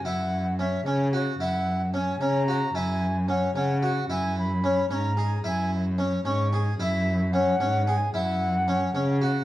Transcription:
0.05 F#2 E4 F#5
0.59 C#4 E5
0.86 C#3 C#4 C#5
1.13 F#4
1.40 F#2 E4 F#5
1.94 C#4 G#5
2.21 C#3 C#4 A#5
2.48 F#4
2.75 F#2 E4 G#5
3.28 C#4 F#5
3.56 C#3 C#4 F#5
3.83 F#4
4.10 F#2 E4 G#5
4.39 B5
4.64 C#4
4.91 G#2 C#4 A#5
5.17 G#4
5.44 F#2 E4 G#5
5.99 C#4
6.25 G#2 C#4 C#6
6.53 G#4
6.79 F#2 E4 E5
7.33 C#4 F#5
7.60 G#2 C#4
7.87 G#4
7.97 G#5
8.14 F#2 E4 F#5
8.68 C#4
8.95 C#3 C#4
9.22 F#4

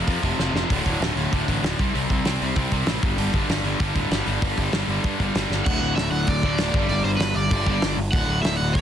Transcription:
0.07 F2 C3 F3, kick, open hi-hat
0.23 F1 F2 C3 F3, kick, open hi-hat
0.39 F1 F2 C3 F3, snare
0.53 F1 F2 C3 F3, snare
0.70 D1 D2 A2 D3, kick, open hi-hat
0.85 D1 D2 A2 D3, kick, open hi-hat
1.00 D1 D2 A2 D3, snare, open hi-hat
1.16 D1 D2 A2 D3, open hi-hat
1.33 D1 D2 A2 D3, kick, open hi-hat
1.48 A1 D2 A2 D3, kick, open hi-hat
1.63 D1 D2 A2 D3, snare, open hi-hat
1.79 C2 C3 G3 C4, kick, open hi-hat
1.94 C2 C3 G3 C4, open hi-hat
2.10 C2 C3 G3 C4, kick, open hi-hat
2.25 C2 C3 G3 C4, snare, open hi-hat
2.42 C2 C3 G3 C4, open hi-hat
2.56 C2 C3 G3 C4, kick, open hi-hat
2.71 C2 C3 G3 C4, kick, open hi-hat
2.87 A1 C3 G3 C4, snare, open hi-hat
3.02 G1 G2 D3 G3, kick, open hi-hat
3.18 G1 G2 D3 G3, open hi-hat
3.33 G1 G2 D3 G3, kick, open hi-hat
3.49 G1 G2 D3 G3, snare, open hi-hat
3.63 G1 G2 D3 G3, open hi-hat
3.79 G1 G2 D3 G3, kick, open hi-hat
3.95 D1 G2 D3 G3, kick, open hi-hat
4.11 G1 G2 D3 G3, snare, open hi-hat
4.26 G1 G2 D3 G3, open hi-hat
4.42 G1 G2 D3 G3, kick, open hi-hat
4.57 G1 G2 D3 G3, kick, open hi-hat
4.73 G1 G2 D3 G3, snare, open hi-hat
4.87 G1 G2 D3 G3, open hi-hat
5.04 G2 D3 G3, kick, open hi-hat
5.20 G1 G2 D3 G3, kick, open hi-hat
5.35 G1 G2 D3 G3, snare, open hi-hat
5.50 G1 G2 D3, snare
5.54 G3
5.65 D1 D2 A2 F#5, kick, crash
5.72 D3
5.81 D1
5.96 D1 E5, snare, open hi-hat
6.11 D1 F#5
6.27 D1 D5, kick, open hi-hat
6.43 D1 D2 A2 D3, kick
6.58 D1 D2 A2, snare, open hi-hat
6.63 D3
6.73 G1 G2 D3, kick
6.78 G3
6.89 G1 D5, open hi-hat
7.04 G1 C5
7.17 G1 B4, snare, open hi-hat
7.35 G1 D5
7.51 G1 G2 D3 G3, kick, open hi-hat
7.66 G1 D3 G3, kick
7.71 G2
7.82 G1, snare, open hi-hat
7.97 G1
8.12 D1 D2 A2 F#5, kick, open hi-hat
8.17 D3
8.27 D1
8.42 D1 E5, snare, open hi-hat
8.57 D1 F#5
8.73 D1 D5, kick, open hi-hat

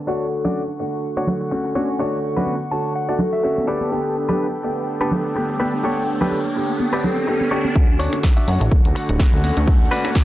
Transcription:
Already playing: D3
0.07 D3 A3 D4 F#4 C#5 F#5 C#6, tambourine
0.32 tambourine
0.45 D3 A3 C#4 D4 F#4 D5, tambourine, low conga
0.55 tambourine
0.69 tambourine
0.79 D3 A3 F#4, muted clean electric guitar stroke, tambourine
0.93 tambourine
1.04 tambourine
1.17 D3 A3 D4 F#4 C#5, tambourine
1.27 tambourine, low conga
1.41 muted clean electric guitar stroke, tambourine
1.51 D3 A3 C#4 F#4, muted clean electric guitar stroke, tambourine
1.64 muted clean electric guitar stroke, tambourine
1.75 D3 A3 C#4 D4 F#4 C#5, tambourine, high conga
1.89 tambourine
1.99 D3 A3 D4 F#4 C#5, tambourine
2.13 tambourine
2.24 tambourine
2.37 D3 A3 C#4 D4 F#4 B4, tambourine, low conga
2.47 tambourine, high conga
2.61 tambourine
2.71 D3 A3 F#4 C#5 A5, muted clean electric guitar stroke, tambourine
2.85 tambourine
2.95 F#5, tambourine
3.09 D3 A3 D4 F#4 D5, tambourine
3.19 tambourine, low conga
3.33 E5, muted clean electric guitar stroke, tambourine
3.43 D3 A3 C#4 F#4 E5, muted clean electric guitar stroke, tambourine
3.57 muted clean electric guitar stroke, tambourine, high conga
3.67 D3 A3 B3 D4 G4 A4 B4 D5 G5, tambourine
3.81 tambourine, high conga
3.91 D3 A3 B3 G4, tambourine, riser
4.05 tambourine
4.16 tambourine
4.28 D3 A3 B3 D4 G4 A4 B4, tambourine, low conga
4.40 tambourine
4.53 tambourine
4.63 D3 A3 B3 G4, muted clean electric guitar stroke, tambourine
4.77 tambourine
4.88 tambourine
5.01 D3 A3 B3 D4 G4 A4 B4, tambourine
5.12 tambourine, low conga
5.25 muted clean electric guitar stroke, tambourine
5.35 D3 A3 B3 G4, muted clean electric guitar stroke, tambourine
5.49 muted clean electric guitar stroke, tambourine
5.59 D3 A3 B3 D4 G4 A4 B4 C#5, tambourine, high conga
5.83 D3 A3 B3 D4 G4 A4 C#5, tambourine
6.08 tambourine
6.21 D3 A3 B3 D4 G4 A4 B4, tambourine, low conga
6.32 tambourine, high conga
6.45 tambourine
6.55 D3 A3 B3 G4, muted clean electric guitar stroke, tambourine
6.70 tambourine
6.80 tambourine, high conga
6.92 D3 A3 B3 D4 G4 A4 B4
7.04 tambourine, low conga
7.17 muted clean electric guitar stroke, tambourine
7.27 D3 A3 B3 G4, muted clean electric guitar stroke
7.40 muted clean electric guitar stroke, tambourine, high conga
7.51 D3 A3 B3 D4 G4 A4 C#5
7.65 tambourine, high conga
7.75 D2 D3 A3 C#4 F#4 F#5 C#6, kick, riser
7.99 D4 F#4 C#5, open hi-hat
8.12 D3 A3 C#4 F#4, finger snap, closed hi-hat
8.23 kick, snare
8.36 D4 F#4 E5, closed hi-hat
8.48 F#2 D3 A3 F#4 C#5, open hi-hat
8.60 A1, muted clean electric guitar stroke, closed hi-hat
8.71 D1, muted clean electric guitar stroke, kick
8.85 D2 D3 A3 F#4, closed hi-hat
8.95 muted clean electric guitar stroke, open hi-hat
9.08 D1, muted clean electric guitar stroke, closed hi-hat
9.19 D3 A3 C#4 F#4, kick, snare
9.33 D2, closed hi-hat
9.43 D3 A3 C#4 F#4, open hi-hat
9.57 D2, closed hi-hat
9.67 D3 A3 C#4 F#4 B4, kick
9.91 D4 F#4 B4, open hi-hat
10.04 D3 A3 C#4 F#4, finger snap, closed hi-hat
10.15 kick, snare

